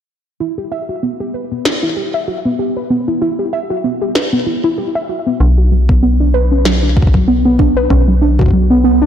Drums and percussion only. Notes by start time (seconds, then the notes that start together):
1.65 snare
4.15 snare
5.89 kick
6.65 snare
6.97 kick
7.02 kick
7.07 kick
7.14 kick
7.59 kick
7.90 kick
8.39 kick
8.41 kick
8.46 kick
8.48 kick
8.51 kick